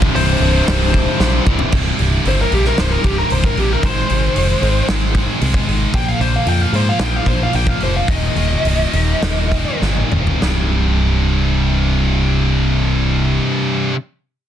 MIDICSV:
0, 0, Header, 1, 5, 480
1, 0, Start_track
1, 0, Key_signature, -3, "minor"
1, 0, Tempo, 525855
1, 1575, Time_signature, 4, 2, 24, 8
1, 5419, Tempo, 538117
1, 7339, Tempo, 576923
1, 8779, Tempo, 620476
1, 12388, End_track
2, 0, Start_track
2, 0, Title_t, "Lead electric guitar"
2, 0, Program_c, 0, 29
2, 140, Note_on_c, 0, 72, 82
2, 1299, Note_off_c, 0, 72, 0
2, 2083, Note_on_c, 0, 72, 100
2, 2185, Note_off_c, 0, 72, 0
2, 2202, Note_on_c, 0, 70, 80
2, 2316, Note_off_c, 0, 70, 0
2, 2316, Note_on_c, 0, 67, 78
2, 2422, Note_off_c, 0, 67, 0
2, 2437, Note_on_c, 0, 70, 85
2, 2542, Note_off_c, 0, 70, 0
2, 2548, Note_on_c, 0, 72, 76
2, 2652, Note_on_c, 0, 70, 73
2, 2658, Note_off_c, 0, 72, 0
2, 2775, Note_off_c, 0, 70, 0
2, 2775, Note_on_c, 0, 67, 86
2, 2904, Note_off_c, 0, 67, 0
2, 2904, Note_on_c, 0, 70, 77
2, 3016, Note_off_c, 0, 70, 0
2, 3030, Note_on_c, 0, 72, 83
2, 3139, Note_off_c, 0, 72, 0
2, 3147, Note_on_c, 0, 70, 83
2, 3278, Note_off_c, 0, 70, 0
2, 3278, Note_on_c, 0, 67, 82
2, 3399, Note_off_c, 0, 67, 0
2, 3399, Note_on_c, 0, 70, 74
2, 3517, Note_off_c, 0, 70, 0
2, 3517, Note_on_c, 0, 72, 89
2, 4439, Note_off_c, 0, 72, 0
2, 5430, Note_on_c, 0, 79, 100
2, 5538, Note_off_c, 0, 79, 0
2, 5549, Note_on_c, 0, 77, 82
2, 5657, Note_off_c, 0, 77, 0
2, 5668, Note_on_c, 0, 72, 94
2, 5776, Note_off_c, 0, 72, 0
2, 5793, Note_on_c, 0, 77, 91
2, 5907, Note_off_c, 0, 77, 0
2, 5907, Note_on_c, 0, 79, 86
2, 6022, Note_off_c, 0, 79, 0
2, 6022, Note_on_c, 0, 77, 91
2, 6130, Note_off_c, 0, 77, 0
2, 6149, Note_on_c, 0, 72, 78
2, 6254, Note_off_c, 0, 72, 0
2, 6269, Note_on_c, 0, 77, 88
2, 6395, Note_off_c, 0, 77, 0
2, 6395, Note_on_c, 0, 79, 96
2, 6512, Note_off_c, 0, 79, 0
2, 6512, Note_on_c, 0, 77, 73
2, 6616, Note_off_c, 0, 77, 0
2, 6616, Note_on_c, 0, 72, 87
2, 6728, Note_off_c, 0, 72, 0
2, 6752, Note_on_c, 0, 77, 75
2, 6859, Note_off_c, 0, 77, 0
2, 6859, Note_on_c, 0, 79, 83
2, 6979, Note_off_c, 0, 79, 0
2, 6979, Note_on_c, 0, 77, 81
2, 7092, Note_off_c, 0, 77, 0
2, 7110, Note_on_c, 0, 72, 78
2, 7220, Note_off_c, 0, 72, 0
2, 7225, Note_on_c, 0, 77, 80
2, 7339, Note_off_c, 0, 77, 0
2, 7343, Note_on_c, 0, 75, 92
2, 8746, Note_off_c, 0, 75, 0
2, 12388, End_track
3, 0, Start_track
3, 0, Title_t, "Distorted electric guitar"
3, 0, Program_c, 1, 30
3, 0, Note_on_c, 1, 36, 104
3, 0, Note_on_c, 1, 43, 109
3, 0, Note_on_c, 1, 48, 124
3, 125, Note_off_c, 1, 36, 0
3, 128, Note_off_c, 1, 43, 0
3, 133, Note_off_c, 1, 48, 0
3, 136, Note_on_c, 1, 36, 91
3, 139, Note_on_c, 1, 43, 100
3, 144, Note_on_c, 1, 48, 100
3, 358, Note_off_c, 1, 36, 0
3, 359, Note_off_c, 1, 43, 0
3, 369, Note_off_c, 1, 48, 0
3, 369, Note_on_c, 1, 36, 98
3, 370, Note_on_c, 1, 43, 91
3, 380, Note_on_c, 1, 48, 104
3, 608, Note_off_c, 1, 36, 0
3, 610, Note_off_c, 1, 43, 0
3, 615, Note_off_c, 1, 48, 0
3, 619, Note_on_c, 1, 36, 93
3, 621, Note_on_c, 1, 43, 96
3, 626, Note_on_c, 1, 48, 103
3, 1076, Note_off_c, 1, 36, 0
3, 1081, Note_off_c, 1, 43, 0
3, 1085, Note_off_c, 1, 48, 0
3, 1087, Note_on_c, 1, 36, 81
3, 1092, Note_on_c, 1, 43, 88
3, 1096, Note_on_c, 1, 48, 93
3, 1311, Note_off_c, 1, 36, 0
3, 1320, Note_off_c, 1, 48, 0
3, 1322, Note_off_c, 1, 43, 0
3, 1322, Note_on_c, 1, 36, 95
3, 1330, Note_on_c, 1, 48, 94
3, 1333, Note_on_c, 1, 43, 107
3, 1554, Note_off_c, 1, 36, 0
3, 1558, Note_off_c, 1, 48, 0
3, 1559, Note_off_c, 1, 43, 0
3, 1572, Note_on_c, 1, 36, 96
3, 1574, Note_on_c, 1, 43, 88
3, 1575, Note_on_c, 1, 48, 104
3, 1800, Note_off_c, 1, 36, 0
3, 1809, Note_off_c, 1, 43, 0
3, 1809, Note_off_c, 1, 48, 0
3, 1811, Note_on_c, 1, 36, 84
3, 1820, Note_on_c, 1, 43, 75
3, 1820, Note_on_c, 1, 48, 90
3, 2046, Note_off_c, 1, 36, 0
3, 2053, Note_off_c, 1, 43, 0
3, 2054, Note_off_c, 1, 48, 0
3, 2057, Note_on_c, 1, 36, 87
3, 2064, Note_on_c, 1, 43, 89
3, 2065, Note_on_c, 1, 48, 94
3, 2281, Note_off_c, 1, 36, 0
3, 2283, Note_off_c, 1, 43, 0
3, 2286, Note_off_c, 1, 48, 0
3, 2292, Note_on_c, 1, 36, 76
3, 2294, Note_on_c, 1, 43, 89
3, 2297, Note_on_c, 1, 48, 84
3, 2516, Note_off_c, 1, 36, 0
3, 2525, Note_off_c, 1, 43, 0
3, 2527, Note_off_c, 1, 48, 0
3, 2527, Note_on_c, 1, 36, 89
3, 2536, Note_on_c, 1, 43, 91
3, 2538, Note_on_c, 1, 48, 94
3, 2758, Note_off_c, 1, 36, 0
3, 2762, Note_off_c, 1, 43, 0
3, 2763, Note_off_c, 1, 48, 0
3, 2769, Note_on_c, 1, 36, 83
3, 2773, Note_on_c, 1, 43, 88
3, 2774, Note_on_c, 1, 48, 91
3, 2999, Note_off_c, 1, 36, 0
3, 3004, Note_off_c, 1, 43, 0
3, 3007, Note_off_c, 1, 48, 0
3, 3010, Note_on_c, 1, 36, 79
3, 3015, Note_on_c, 1, 43, 77
3, 3018, Note_on_c, 1, 48, 81
3, 3245, Note_off_c, 1, 43, 0
3, 3247, Note_off_c, 1, 36, 0
3, 3248, Note_off_c, 1, 48, 0
3, 3256, Note_on_c, 1, 43, 89
3, 3258, Note_on_c, 1, 36, 89
3, 3259, Note_on_c, 1, 48, 99
3, 3481, Note_off_c, 1, 43, 0
3, 3482, Note_off_c, 1, 36, 0
3, 3482, Note_off_c, 1, 48, 0
3, 3492, Note_on_c, 1, 44, 90
3, 3503, Note_on_c, 1, 51, 100
3, 3505, Note_on_c, 1, 56, 92
3, 3714, Note_off_c, 1, 44, 0
3, 3719, Note_off_c, 1, 56, 0
3, 3722, Note_off_c, 1, 51, 0
3, 3725, Note_on_c, 1, 44, 82
3, 3730, Note_on_c, 1, 56, 87
3, 3733, Note_on_c, 1, 51, 76
3, 3958, Note_off_c, 1, 44, 0
3, 3959, Note_off_c, 1, 51, 0
3, 3963, Note_off_c, 1, 56, 0
3, 3969, Note_on_c, 1, 44, 78
3, 3969, Note_on_c, 1, 51, 80
3, 3974, Note_on_c, 1, 56, 89
3, 4194, Note_off_c, 1, 44, 0
3, 4203, Note_off_c, 1, 51, 0
3, 4205, Note_on_c, 1, 44, 73
3, 4206, Note_off_c, 1, 56, 0
3, 4214, Note_on_c, 1, 51, 81
3, 4217, Note_on_c, 1, 56, 91
3, 4436, Note_off_c, 1, 44, 0
3, 4446, Note_off_c, 1, 51, 0
3, 4447, Note_on_c, 1, 44, 85
3, 4450, Note_off_c, 1, 56, 0
3, 4457, Note_on_c, 1, 51, 88
3, 4460, Note_on_c, 1, 56, 103
3, 4681, Note_off_c, 1, 44, 0
3, 4684, Note_off_c, 1, 51, 0
3, 4685, Note_off_c, 1, 56, 0
3, 4692, Note_on_c, 1, 44, 68
3, 4695, Note_on_c, 1, 51, 83
3, 4696, Note_on_c, 1, 56, 87
3, 4921, Note_off_c, 1, 44, 0
3, 4925, Note_off_c, 1, 51, 0
3, 4929, Note_off_c, 1, 56, 0
3, 4932, Note_on_c, 1, 44, 68
3, 4936, Note_on_c, 1, 51, 73
3, 4940, Note_on_c, 1, 56, 85
3, 5170, Note_off_c, 1, 44, 0
3, 5173, Note_off_c, 1, 51, 0
3, 5175, Note_off_c, 1, 56, 0
3, 5181, Note_on_c, 1, 44, 81
3, 5184, Note_on_c, 1, 51, 83
3, 5186, Note_on_c, 1, 56, 93
3, 5405, Note_off_c, 1, 44, 0
3, 5407, Note_off_c, 1, 51, 0
3, 5408, Note_off_c, 1, 56, 0
3, 5418, Note_on_c, 1, 46, 87
3, 5422, Note_on_c, 1, 53, 85
3, 5426, Note_on_c, 1, 58, 92
3, 5642, Note_off_c, 1, 53, 0
3, 5643, Note_off_c, 1, 46, 0
3, 5653, Note_on_c, 1, 46, 79
3, 5653, Note_on_c, 1, 53, 85
3, 5654, Note_off_c, 1, 58, 0
3, 5658, Note_on_c, 1, 58, 86
3, 5880, Note_off_c, 1, 46, 0
3, 5887, Note_off_c, 1, 53, 0
3, 5891, Note_on_c, 1, 46, 81
3, 5898, Note_off_c, 1, 58, 0
3, 5898, Note_on_c, 1, 53, 89
3, 5901, Note_on_c, 1, 58, 94
3, 6106, Note_off_c, 1, 46, 0
3, 6113, Note_off_c, 1, 53, 0
3, 6117, Note_on_c, 1, 46, 75
3, 6124, Note_on_c, 1, 53, 81
3, 6125, Note_off_c, 1, 58, 0
3, 6129, Note_on_c, 1, 58, 84
3, 6352, Note_off_c, 1, 46, 0
3, 6357, Note_off_c, 1, 53, 0
3, 6362, Note_off_c, 1, 58, 0
3, 6363, Note_on_c, 1, 46, 74
3, 6368, Note_on_c, 1, 53, 85
3, 6373, Note_on_c, 1, 58, 95
3, 6588, Note_off_c, 1, 46, 0
3, 6594, Note_off_c, 1, 53, 0
3, 6597, Note_off_c, 1, 58, 0
3, 6599, Note_on_c, 1, 46, 70
3, 6605, Note_on_c, 1, 53, 78
3, 6607, Note_on_c, 1, 58, 83
3, 6833, Note_off_c, 1, 46, 0
3, 6837, Note_off_c, 1, 53, 0
3, 6839, Note_off_c, 1, 58, 0
3, 6844, Note_on_c, 1, 46, 66
3, 6848, Note_on_c, 1, 53, 74
3, 6850, Note_on_c, 1, 58, 76
3, 7077, Note_off_c, 1, 46, 0
3, 7077, Note_off_c, 1, 53, 0
3, 7083, Note_off_c, 1, 58, 0
3, 7088, Note_on_c, 1, 46, 86
3, 7088, Note_on_c, 1, 53, 94
3, 7093, Note_on_c, 1, 58, 91
3, 7321, Note_off_c, 1, 46, 0
3, 7321, Note_off_c, 1, 53, 0
3, 7324, Note_off_c, 1, 58, 0
3, 7333, Note_on_c, 1, 39, 84
3, 7335, Note_on_c, 1, 46, 83
3, 7338, Note_on_c, 1, 51, 94
3, 7560, Note_off_c, 1, 39, 0
3, 7561, Note_off_c, 1, 46, 0
3, 7563, Note_off_c, 1, 51, 0
3, 7570, Note_on_c, 1, 39, 74
3, 7571, Note_on_c, 1, 46, 79
3, 7573, Note_on_c, 1, 51, 82
3, 7784, Note_off_c, 1, 39, 0
3, 7788, Note_off_c, 1, 46, 0
3, 7788, Note_off_c, 1, 51, 0
3, 7794, Note_on_c, 1, 39, 77
3, 7798, Note_on_c, 1, 46, 85
3, 7798, Note_on_c, 1, 51, 85
3, 8024, Note_off_c, 1, 39, 0
3, 8032, Note_off_c, 1, 46, 0
3, 8033, Note_off_c, 1, 51, 0
3, 8034, Note_on_c, 1, 39, 74
3, 8042, Note_on_c, 1, 46, 72
3, 8042, Note_on_c, 1, 51, 79
3, 8264, Note_off_c, 1, 39, 0
3, 8268, Note_off_c, 1, 46, 0
3, 8269, Note_off_c, 1, 51, 0
3, 8274, Note_on_c, 1, 39, 77
3, 8278, Note_on_c, 1, 46, 90
3, 8279, Note_on_c, 1, 51, 91
3, 8511, Note_off_c, 1, 39, 0
3, 8512, Note_off_c, 1, 46, 0
3, 8514, Note_off_c, 1, 51, 0
3, 8521, Note_on_c, 1, 39, 62
3, 8522, Note_on_c, 1, 46, 79
3, 8524, Note_on_c, 1, 51, 81
3, 8755, Note_off_c, 1, 39, 0
3, 8761, Note_off_c, 1, 46, 0
3, 8765, Note_on_c, 1, 39, 71
3, 8767, Note_off_c, 1, 51, 0
3, 8771, Note_on_c, 1, 46, 69
3, 8777, Note_on_c, 1, 51, 75
3, 8998, Note_off_c, 1, 39, 0
3, 9003, Note_off_c, 1, 46, 0
3, 9005, Note_off_c, 1, 51, 0
3, 9007, Note_on_c, 1, 39, 74
3, 9012, Note_on_c, 1, 46, 81
3, 9015, Note_on_c, 1, 51, 84
3, 9231, Note_off_c, 1, 39, 0
3, 9234, Note_on_c, 1, 36, 81
3, 9236, Note_off_c, 1, 46, 0
3, 9237, Note_off_c, 1, 51, 0
3, 9254, Note_on_c, 1, 43, 93
3, 9268, Note_on_c, 1, 48, 82
3, 11942, Note_off_c, 1, 36, 0
3, 11961, Note_off_c, 1, 43, 0
3, 11975, Note_off_c, 1, 48, 0
3, 12388, End_track
4, 0, Start_track
4, 0, Title_t, "Picked electric bass"
4, 0, Program_c, 2, 34
4, 136, Note_on_c, 2, 24, 86
4, 314, Note_off_c, 2, 24, 0
4, 364, Note_on_c, 2, 24, 95
4, 546, Note_off_c, 2, 24, 0
4, 614, Note_on_c, 2, 24, 85
4, 969, Note_off_c, 2, 24, 0
4, 1094, Note_on_c, 2, 34, 102
4, 1272, Note_off_c, 2, 34, 0
4, 1336, Note_on_c, 2, 24, 81
4, 1513, Note_off_c, 2, 24, 0
4, 1576, Note_on_c, 2, 24, 84
4, 1743, Note_off_c, 2, 24, 0
4, 1821, Note_on_c, 2, 24, 88
4, 1986, Note_off_c, 2, 24, 0
4, 2056, Note_on_c, 2, 31, 78
4, 2223, Note_off_c, 2, 31, 0
4, 2301, Note_on_c, 2, 34, 78
4, 2467, Note_off_c, 2, 34, 0
4, 2540, Note_on_c, 2, 24, 80
4, 2706, Note_off_c, 2, 24, 0
4, 2777, Note_on_c, 2, 24, 85
4, 2944, Note_off_c, 2, 24, 0
4, 3021, Note_on_c, 2, 24, 85
4, 3187, Note_off_c, 2, 24, 0
4, 3258, Note_on_c, 2, 34, 79
4, 3425, Note_off_c, 2, 34, 0
4, 3497, Note_on_c, 2, 32, 87
4, 3664, Note_off_c, 2, 32, 0
4, 3741, Note_on_c, 2, 32, 84
4, 3907, Note_off_c, 2, 32, 0
4, 3980, Note_on_c, 2, 29, 82
4, 4147, Note_off_c, 2, 29, 0
4, 4216, Note_on_c, 2, 32, 84
4, 4384, Note_off_c, 2, 32, 0
4, 4460, Note_on_c, 2, 32, 79
4, 4795, Note_off_c, 2, 32, 0
4, 4942, Note_on_c, 2, 36, 93
4, 5108, Note_off_c, 2, 36, 0
4, 5182, Note_on_c, 2, 32, 77
4, 5348, Note_off_c, 2, 32, 0
4, 5419, Note_on_c, 2, 34, 80
4, 5583, Note_off_c, 2, 34, 0
4, 5649, Note_on_c, 2, 34, 85
4, 5816, Note_off_c, 2, 34, 0
4, 5887, Note_on_c, 2, 41, 73
4, 6053, Note_off_c, 2, 41, 0
4, 6122, Note_on_c, 2, 44, 74
4, 6291, Note_off_c, 2, 44, 0
4, 6361, Note_on_c, 2, 34, 78
4, 6531, Note_off_c, 2, 34, 0
4, 6603, Note_on_c, 2, 34, 85
4, 6773, Note_off_c, 2, 34, 0
4, 6851, Note_on_c, 2, 34, 85
4, 7020, Note_off_c, 2, 34, 0
4, 7093, Note_on_c, 2, 29, 72
4, 7265, Note_off_c, 2, 29, 0
4, 7333, Note_on_c, 2, 27, 75
4, 7497, Note_off_c, 2, 27, 0
4, 7561, Note_on_c, 2, 27, 75
4, 7728, Note_off_c, 2, 27, 0
4, 7800, Note_on_c, 2, 24, 75
4, 7968, Note_off_c, 2, 24, 0
4, 8038, Note_on_c, 2, 27, 81
4, 8208, Note_off_c, 2, 27, 0
4, 8278, Note_on_c, 2, 27, 75
4, 8624, Note_off_c, 2, 27, 0
4, 8775, Note_on_c, 2, 31, 83
4, 8940, Note_off_c, 2, 31, 0
4, 9012, Note_on_c, 2, 27, 69
4, 9179, Note_off_c, 2, 27, 0
4, 9248, Note_on_c, 2, 24, 75
4, 11539, Note_off_c, 2, 24, 0
4, 12388, End_track
5, 0, Start_track
5, 0, Title_t, "Drums"
5, 18, Note_on_c, 9, 36, 91
5, 110, Note_off_c, 9, 36, 0
5, 142, Note_on_c, 9, 46, 76
5, 233, Note_off_c, 9, 46, 0
5, 621, Note_on_c, 9, 38, 117
5, 621, Note_on_c, 9, 46, 65
5, 712, Note_off_c, 9, 38, 0
5, 712, Note_off_c, 9, 46, 0
5, 859, Note_on_c, 9, 36, 85
5, 950, Note_off_c, 9, 36, 0
5, 1097, Note_on_c, 9, 38, 75
5, 1189, Note_off_c, 9, 38, 0
5, 1338, Note_on_c, 9, 36, 95
5, 1429, Note_off_c, 9, 36, 0
5, 1450, Note_on_c, 9, 43, 99
5, 1541, Note_off_c, 9, 43, 0
5, 1572, Note_on_c, 9, 49, 96
5, 1576, Note_on_c, 9, 36, 107
5, 1663, Note_off_c, 9, 49, 0
5, 1668, Note_off_c, 9, 36, 0
5, 1814, Note_on_c, 9, 46, 49
5, 1905, Note_off_c, 9, 46, 0
5, 2056, Note_on_c, 9, 46, 60
5, 2147, Note_off_c, 9, 46, 0
5, 2299, Note_on_c, 9, 46, 45
5, 2390, Note_off_c, 9, 46, 0
5, 2416, Note_on_c, 9, 38, 32
5, 2507, Note_off_c, 9, 38, 0
5, 2537, Note_on_c, 9, 38, 97
5, 2537, Note_on_c, 9, 46, 65
5, 2629, Note_off_c, 9, 38, 0
5, 2629, Note_off_c, 9, 46, 0
5, 2777, Note_on_c, 9, 36, 84
5, 2778, Note_on_c, 9, 46, 51
5, 2869, Note_off_c, 9, 36, 0
5, 2869, Note_off_c, 9, 46, 0
5, 3013, Note_on_c, 9, 46, 64
5, 3104, Note_off_c, 9, 46, 0
5, 3137, Note_on_c, 9, 36, 87
5, 3228, Note_off_c, 9, 36, 0
5, 3259, Note_on_c, 9, 46, 45
5, 3350, Note_off_c, 9, 46, 0
5, 3495, Note_on_c, 9, 46, 69
5, 3497, Note_on_c, 9, 36, 109
5, 3586, Note_off_c, 9, 46, 0
5, 3589, Note_off_c, 9, 36, 0
5, 3738, Note_on_c, 9, 46, 49
5, 3829, Note_off_c, 9, 46, 0
5, 3978, Note_on_c, 9, 46, 66
5, 4069, Note_off_c, 9, 46, 0
5, 4223, Note_on_c, 9, 46, 52
5, 4315, Note_off_c, 9, 46, 0
5, 4460, Note_on_c, 9, 38, 105
5, 4460, Note_on_c, 9, 46, 65
5, 4551, Note_off_c, 9, 38, 0
5, 4551, Note_off_c, 9, 46, 0
5, 4699, Note_on_c, 9, 36, 76
5, 4699, Note_on_c, 9, 46, 42
5, 4790, Note_off_c, 9, 36, 0
5, 4790, Note_off_c, 9, 46, 0
5, 4941, Note_on_c, 9, 46, 63
5, 5033, Note_off_c, 9, 46, 0
5, 5059, Note_on_c, 9, 36, 84
5, 5150, Note_off_c, 9, 36, 0
5, 5190, Note_on_c, 9, 46, 44
5, 5281, Note_off_c, 9, 46, 0
5, 5420, Note_on_c, 9, 36, 111
5, 5424, Note_on_c, 9, 46, 65
5, 5509, Note_off_c, 9, 36, 0
5, 5513, Note_off_c, 9, 46, 0
5, 5662, Note_on_c, 9, 46, 44
5, 5751, Note_off_c, 9, 46, 0
5, 5890, Note_on_c, 9, 46, 62
5, 5979, Note_off_c, 9, 46, 0
5, 6132, Note_on_c, 9, 46, 47
5, 6222, Note_off_c, 9, 46, 0
5, 6363, Note_on_c, 9, 38, 102
5, 6363, Note_on_c, 9, 46, 59
5, 6453, Note_off_c, 9, 38, 0
5, 6453, Note_off_c, 9, 46, 0
5, 6602, Note_on_c, 9, 36, 73
5, 6604, Note_on_c, 9, 46, 43
5, 6691, Note_off_c, 9, 36, 0
5, 6693, Note_off_c, 9, 46, 0
5, 6839, Note_on_c, 9, 46, 61
5, 6929, Note_off_c, 9, 46, 0
5, 6963, Note_on_c, 9, 36, 80
5, 7052, Note_off_c, 9, 36, 0
5, 7084, Note_on_c, 9, 46, 46
5, 7173, Note_off_c, 9, 46, 0
5, 7332, Note_on_c, 9, 46, 66
5, 7333, Note_on_c, 9, 36, 111
5, 7416, Note_off_c, 9, 36, 0
5, 7416, Note_off_c, 9, 46, 0
5, 7566, Note_on_c, 9, 46, 50
5, 7650, Note_off_c, 9, 46, 0
5, 7804, Note_on_c, 9, 46, 65
5, 7887, Note_off_c, 9, 46, 0
5, 8040, Note_on_c, 9, 46, 49
5, 8124, Note_off_c, 9, 46, 0
5, 8284, Note_on_c, 9, 38, 101
5, 8284, Note_on_c, 9, 46, 61
5, 8368, Note_off_c, 9, 38, 0
5, 8368, Note_off_c, 9, 46, 0
5, 8526, Note_on_c, 9, 36, 67
5, 8531, Note_on_c, 9, 46, 48
5, 8610, Note_off_c, 9, 36, 0
5, 8614, Note_off_c, 9, 46, 0
5, 8779, Note_on_c, 9, 38, 50
5, 8856, Note_off_c, 9, 38, 0
5, 8892, Note_on_c, 9, 47, 55
5, 8969, Note_off_c, 9, 47, 0
5, 9008, Note_on_c, 9, 45, 68
5, 9086, Note_off_c, 9, 45, 0
5, 9126, Note_on_c, 9, 43, 75
5, 9204, Note_off_c, 9, 43, 0
5, 9244, Note_on_c, 9, 38, 86
5, 9321, Note_off_c, 9, 38, 0
5, 12388, End_track
0, 0, End_of_file